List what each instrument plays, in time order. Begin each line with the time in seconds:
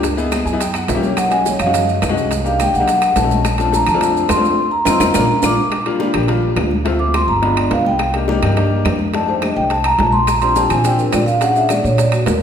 Already playing: upright bass C#2
0.03 high bongo, high conga, high timbale, maracas
0.17 grand piano B3 D#4 E4 G#4, high bongo, maracas
0.32 high bongo, high conga, high timbale, low timbale, claves, maracas
0.45 upright bass F#2, grand piano G#5, high bongo, high conga, maracas
0.53 grand piano B3 D#4 E4 G#4
0.61 grand piano G5, high bongo, high conga, high timbale, maracas
0.74 grand piano F#5, high conga, high timbale, claves, maracas
0.88 upright bass B1, grand piano E5, high bongo, low bongo, high conga, high timbale, low timbale, maracas
0.95 grand piano A#3 C#4 E4 G4
1.02 grand piano C#5, high bongo, high conga, maracas
1.17 vibraphone F#5, high bongo, high conga, high timbale, claves, maracas
1.30 grand piano G#3 C#4 D#4 F#4, vibraphone G#5, high conga, high timbale, maracas
1.46 vibraphone C#5, high bongo, high conga, low timbale, maracas
1.59 upright bass F#2, vibraphone F5, high conga, low conga, high timbale, claves, maracas
1.66 grand piano G#3 C#4 D#4 F#4
1.74 high bongo, high conga, low conga, high timbale, maracas
1.89 high conga, maracas
2.02 upright bass C2, high bongo, low bongo, high conga, high timbale, low timbale, claves, maracas
2.09 grand piano G#3 C#4 D#4 F#4
2.17 maracas
2.31 high bongo, high conga, high timbale, maracas
2.44 grand piano A#3 D4 D#4 G4, vibraphone F5, high bongo, high conga, maracas
2.60 vibraphone G5, high bongo, high conga, high timbale, low timbale, claves, maracas
2.74 upright bass B1, vibraphone F#5, high bongo, high conga, maracas
2.80 grand piano A#3 D4 D#4 G4
2.88 high bongo, high conga, high timbale, maracas
3.02 high conga, high timbale, claves, maracas
3.16 upright bass A#1, vibraphone A5, high bongo, low bongo, high conga, high timbale, low timbale, maracas
3.23 grand piano A3 C#4 D#4 F#4
3.31 high bongo, high conga, maracas
3.45 high bongo, high conga, high timbale, claves, maracas
3.58 grand piano A3 C4 D4 F4, vibraphone A5, high conga, high timbale, maracas
3.72 vibraphone A#5, high bongo, high conga, low timbale, maracas
3.87 upright bass F2, vibraphone A5, high conga, low conga, high timbale, claves, maracas
3.94 grand piano A3 C4 D4 F4
4.01 high bongo, high conga, high timbale, maracas
4.16 high conga, maracas
4.29 upright bass F2, vibraphone C6, high bongo, low bongo, high conga, high timbale, low timbale, claves, maracas
4.36 grand piano A3 C4 D4 F4
4.45 maracas
4.71 vibraphone A#5
4.85 upright bass F2, grand piano C4 D#4 F4, vibraphone C6, low bongo, high conga, high timbale, claves, maracas
5.00 upright bass F2, grand piano C4 D#4 F4, vibraphone A#5, low bongo, high conga, high timbale, claves, maracas
5.14 upright bass A#1, grand piano A#3 D4 F4, low bongo, high conga, high timbale, claves, maracas
5.43 upright bass A#1, grand piano A#3 D4 F4, vibraphone D6, low bongo, high conga, high timbale, claves, maracas
5.72 high bongo, high conga, high timbale, claves
5.86 grand piano G3 A#3 D4 F4, high conga, high timbale
5.99 grand piano G3 A#3 D4 F4, high bongo, high conga, low timbale
6.13 upright bass A#1, grand piano G3 A#3 D4 G4, high conga, low conga, high timbale, claves
6.28 grand piano G3 A#3 D4 F4, high bongo, high conga, low conga, high timbale
6.42 high conga
6.56 upright bass D2, high bongo, low bongo, high conga, high timbale, low timbale, claves
6.71 high conga
6.85 grand piano A3 C4 E4 F4, high bongo, high conga, high timbale
6.99 grand piano A3 C4 E4 F4, vibraphone D6, high bongo, high conga
7.14 vibraphone C6, high bongo, high conga, high timbale, low timbale, claves
7.28 upright bass G1, vibraphone A#5, high bongo, high conga
7.42 grand piano G#3 B3 D4 F4, vibraphone B5, high bongo, high conga, high timbale
7.57 vibraphone D5, high conga, high timbale, claves
7.71 upright bass C2, vibraphone F5, high bongo, low bongo, high conga, high timbale, low timbale
7.86 vibraphone G5, high bongo, high conga
7.99 high bongo, high conga, high timbale, claves
8.14 grand piano A#3 D4 D#4 G4, high conga, high timbale
8.28 grand piano A#3 D4 D#4 G4, high bongo, high conga, low timbale
8.42 upright bass G2, grand piano A#3 D4 D#4 G4, high conga, low conga, high timbale, claves
8.57 grand piano A#3 D4 D#4 G4, high bongo, high conga, high timbale
8.71 high conga
8.85 upright bass F2, high bongo, low bongo, high conga, high timbale, low timbale, claves
8.99 high conga
9.14 grand piano A3 D4 D#4 G4, vibraphone A5, high bongo, high conga, high timbale
9.28 grand piano A3 D4 D#4 G4, vibraphone C5, high bongo, high conga
9.42 vibraphone D#5, high bongo, high conga, high timbale, low timbale, claves
9.56 upright bass C2, vibraphone G5, high bongo, high conga
9.70 vibraphone A5, high bongo, high conga, high timbale
9.84 vibraphone A#5, high conga, high timbale, claves
9.99 upright bass A#1, vibraphone A5, high bongo, low bongo, high conga, high timbale, low timbale
10.13 vibraphone C6, high bongo, high conga
10.27 vibraphone A#5, high bongo, high conga, high timbale, claves, maracas
10.41 grand piano C4 D4 F4 G4, vibraphone C6, high conga, high timbale, maracas
10.56 grand piano C4 D4 F4 G4, vibraphone A5, high bongo, high conga, low timbale, maracas
10.70 upright bass A#2, grand piano C4 D4 F4 G4, vibraphone G#5, high conga, low conga, high timbale, claves, maracas
10.84 grand piano C4 D4 F4 G4, vibraphone G5, high bongo, high conga, low conga, high timbale, maracas
10.98 vibraphone A#4, high conga, maracas
11.13 upright bass A#2, vibraphone D5, high bongo, low bongo, high conga, high timbale, low timbale, claves, maracas
11.26 vibraphone F5, maracas
11.40 grand piano C#4 D4 F#4 G#4, vibraphone F#5, high bongo, high conga, high timbale, maracas
11.56 grand piano C#4 D4 F#4 G#4, vibraphone E5, high bongo, high conga, maracas
11.69 vibraphone D5, high bongo, high conga, high timbale, low timbale, claves, maracas
11.84 upright bass A#2, vibraphone C#5, high bongo, high conga, maracas
11.98 vibraphone D5, high bongo, high conga, high timbale, maracas
12.12 vibraphone F#4, high conga, high timbale, claves, maracas
12.26 upright bass D#2, vibraphone A#4, high bongo, low bongo, high conga, high timbale, low timbale, maracas